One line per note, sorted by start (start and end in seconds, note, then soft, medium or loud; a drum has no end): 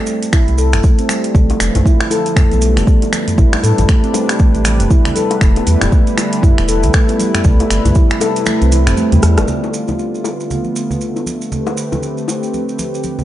0.07 maracas medium
0.23 closed hi-hat medium
0.23 maracas soft
0.33 0.41 E4 loud
0.33 finger snap medium
0.33 kick loud
0.33 maracas medium
0.48 0.75 C2 medium
0.48 closed hi-hat soft
0.48 maracas soft
0.58 0.72 A4 medium
0.58 maracas medium
0.73 0.80 G1 loud
0.73 finger snap medium
0.73 closed hi-hat medium
0.73 mid tom medium
0.73 maracas soft
0.84 0.92 A3 medium
0.84 kick loud
0.84 maracas medium
0.98 1.04 C4 medium
0.98 closed hi-hat soft
0.98 maracas soft
1.09 1.17 G3 medium
1.09 finger snap medium
1.09 maracas medium
1.24 closed hi-hat soft
1.24 maracas soft
1.35 1.52 B1 loud
1.35 3.36 D3 medium
1.35 3.36 F3 medium
1.35 1.49 A3 medium
1.35 3.36 A3 medium
1.35 9.44 B4 medium
1.35 kick loud
1.35 low conga loud
1.35 maracas medium
1.50 closed hi-hat soft
1.50 high bongo medium
1.50 maracas soft
1.60 1.70 F1 medium
1.60 finger snap medium
1.60 open hi-hat medium
1.60 maracas medium
1.75 1.82 B1 medium
1.75 closed hi-hat medium
1.75 mid tom loud
1.75 low bongo medium
1.75 high conga medium
1.75 maracas soft
1.85 1.94 E4 loud
1.85 kick loud
1.85 maracas soft
2.01 finger snap medium
2.01 closed hi-hat soft
2.01 maracas soft
2.10 2.25 A4 loud
2.10 open hi-hat medium
2.10 low bongo medium
2.10 maracas medium
2.26 closed hi-hat medium
2.26 maracas soft
2.36 2.45 A3 medium
2.36 finger snap medium
2.36 kick loud
2.36 mid tom medium
2.36 low conga medium
2.36 maracas medium
2.51 2.78 B1 medium
2.51 2.57 B3 medium
2.51 closed hi-hat soft
2.51 high conga medium
2.51 maracas soft
2.61 2.70 G3 loud
2.61 open hi-hat medium
2.61 maracas medium
2.77 2.83 F1 loud
2.77 finger snap medium
2.77 closed hi-hat medium
2.77 low conga medium
2.77 maracas soft
2.87 3.02 A3 medium
2.87 kick loud
2.87 maracas soft
3.02 closed hi-hat soft
3.02 low bongo medium
3.02 maracas soft
3.12 finger snap medium
3.12 open hi-hat medium
3.12 high conga medium
3.12 maracas medium
3.28 closed hi-hat medium
3.28 mid tom medium
3.28 maracas soft
3.38 3.56 A1 loud
3.38 5.39 C3 medium
3.38 9.44 G3 medium
3.38 5.39 D4 medium
3.38 3.46 E4 medium
3.38 kick loud
3.38 low conga medium
3.38 maracas medium
3.53 finger snap medium
3.53 closed hi-hat soft
3.53 high bongo medium
3.53 low bongo medium
3.53 maracas soft
3.63 3.73 A2 medium
3.63 3.77 A4 loud
3.63 open hi-hat medium
3.63 maracas medium
3.78 3.85 A1 medium
3.78 closed hi-hat medium
3.78 mid tom medium
3.78 low bongo medium
3.78 high conga medium
3.78 low conga medium
3.78 maracas soft
3.89 3.97 A3 medium
3.89 finger snap medium
3.89 kick loud
3.89 maracas soft
4.04 4.10 C4 medium
4.04 closed hi-hat soft
4.04 maracas soft
4.14 4.22 G3 loud
4.14 open hi-hat medium
4.14 high bongo medium
4.14 low bongo medium
4.14 maracas medium
4.29 finger snap medium
4.29 closed hi-hat medium
4.29 maracas soft
4.39 4.54 A3 medium
4.39 kick loud
4.39 high conga medium
4.39 maracas soft
4.55 4.82 A1 medium
4.55 closed hi-hat soft
4.55 maracas soft
4.65 finger snap medium
4.65 open hi-hat medium
4.65 high conga medium
4.65 maracas medium
4.80 4.87 E1 loud
4.80 closed hi-hat medium
4.80 mid tom medium
4.80 maracas soft
4.90 4.99 E4 loud
4.90 kick loud
4.90 high conga medium
4.90 maracas medium
5.05 finger snap medium
5.05 closed hi-hat soft
5.05 low conga medium
5.05 maracas soft
5.16 5.29 A4 loud
5.16 open hi-hat medium
5.16 high conga medium
5.16 maracas medium
5.31 closed hi-hat medium
5.31 high bongo medium
5.31 maracas soft
5.41 5.59 E1 loud
5.41 7.43 D3 medium
5.41 5.50 A3 medium
5.41 9.44 E4 medium
5.41 finger snap medium
5.41 kick loud
5.41 low conga loud
5.41 maracas medium
5.56 5.62 B3 medium
5.56 closed hi-hat soft
5.56 high bongo medium
5.56 maracas soft
5.67 5.76 E2 medium
5.67 5.75 G3 loud
5.67 open hi-hat medium
5.67 maracas medium
5.81 5.88 E1 medium
5.81 finger snap medium
5.81 closed hi-hat medium
5.81 mid tom medium
5.81 low bongo medium
5.81 high conga medium
5.81 maracas soft
5.92 6.07 A3 medium
5.92 kick loud
5.92 maracas soft
6.07 closed hi-hat soft
6.07 maracas soft
6.17 finger snap medium
6.17 open hi-hat medium
6.17 low bongo medium
6.17 maracas medium
6.33 closed hi-hat medium
6.33 maracas soft
6.43 6.51 E4 loud
6.43 kick loud
6.43 mid tom medium
6.43 low conga medium
6.43 maracas soft
6.58 6.85 E1 medium
6.58 finger snap medium
6.58 closed hi-hat soft
6.58 high conga medium
6.58 maracas soft
6.68 6.82 A4 loud
6.68 open hi-hat medium
6.68 maracas medium
6.83 6.90 B1 loud
6.83 closed hi-hat medium
6.83 low conga medium
6.83 maracas soft
6.93 7.02 A3 medium
6.93 finger snap medium
6.93 kick loud
6.93 maracas soft
7.08 7.15 B3 medium
7.08 closed hi-hat soft
7.08 low bongo medium
7.08 maracas soft
7.19 7.27 G3 loud
7.19 open hi-hat medium
7.19 high conga medium
7.19 maracas medium
7.34 finger snap medium
7.34 closed hi-hat medium
7.34 mid tom medium
7.34 maracas soft
7.44 7.62 C2 loud
7.44 9.46 C3 medium
7.44 7.59 A3 medium
7.44 kick loud
7.44 low conga medium
7.44 maracas soft
7.60 closed hi-hat soft
7.60 high bongo medium
7.60 low bongo medium
7.60 maracas soft
7.70 7.80 G1 loud
7.70 finger snap medium
7.70 open hi-hat medium
7.70 maracas medium
7.85 7.92 C2 medium
7.85 closed hi-hat medium
7.85 mid tom medium
7.85 low bongo medium
7.85 high conga medium
7.85 low conga medium
7.85 maracas soft
7.95 8.04 E4 loud
7.95 kick loud
7.95 maracas soft
8.10 finger snap medium
8.10 closed hi-hat soft
8.10 maracas soft
8.20 8.34 A4 loud
8.20 open hi-hat medium
8.20 high bongo medium
8.20 low bongo medium
8.20 maracas medium
8.36 closed hi-hat medium
8.36 maracas soft
8.46 8.55 A3 medium
8.46 finger snap medium
8.46 high conga medium
8.46 maracas medium
8.61 8.89 C2 medium
8.61 8.67 C4 medium
8.61 closed hi-hat soft
8.61 maracas soft
8.72 8.86 E4 loud
8.72 open hi-hat medium
8.72 high conga medium
8.72 maracas medium
8.87 8.93 G1 loud
8.87 8.97 C4 medium
8.87 finger snap medium
8.87 closed hi-hat medium
8.87 mid tom medium
8.87 maracas soft
8.97 9.12 A3 loud
8.97 high conga medium
8.97 maracas medium
9.12 9.19 E2 loud
9.12 9.18 G3 loud
9.12 closed hi-hat soft
9.12 low conga medium
9.12 maracas soft
9.23 9.39 E2 medium
9.23 cross-stick medium
9.23 open hi-hat medium
9.23 high conga medium
9.23 maracas medium
9.38 9.44 G1 medium
9.38 cross-stick medium
9.38 closed hi-hat medium
9.38 high bongo medium
9.38 maracas soft
9.48 13.24 D3 medium
9.48 13.24 A3 medium
9.48 11.50 B3 medium
9.48 11.50 F4 medium
9.48 low conga loud
9.48 maracas soft
9.64 high bongo medium
9.64 maracas soft
9.74 maracas medium
9.88 low bongo medium
9.88 high conga medium
9.88 low conga medium
9.88 maracas soft
9.99 maracas soft
10.15 maracas soft
10.24 high bongo medium
10.24 low bongo medium
10.24 maracas medium
10.40 maracas soft
10.51 low conga medium
10.51 maracas soft
10.64 high conga medium
10.64 maracas soft
10.76 maracas medium
10.91 low conga medium
10.91 maracas soft
11.01 maracas soft
11.16 low bongo medium
11.16 maracas soft
11.26 high conga medium
11.26 maracas medium
11.42 maracas soft
11.51 13.24 C4 medium
11.51 13.24 G4 medium
11.51 13.24 B4 medium
11.51 low conga medium
11.51 maracas soft
11.67 high bongo medium
11.67 low bongo medium
11.67 maracas soft
11.77 maracas medium
11.92 low bongo medium
11.92 high conga medium
11.92 low conga medium
11.92 maracas soft
12.03 maracas soft
12.18 maracas soft
12.28 low bongo medium
12.28 maracas medium
12.43 maracas soft
12.54 high conga medium
12.54 maracas soft
12.69 maracas soft
12.79 high conga medium
12.79 maracas medium
12.94 maracas soft
13.03 high conga medium
13.03 maracas soft
13.19 low conga medium
13.19 maracas soft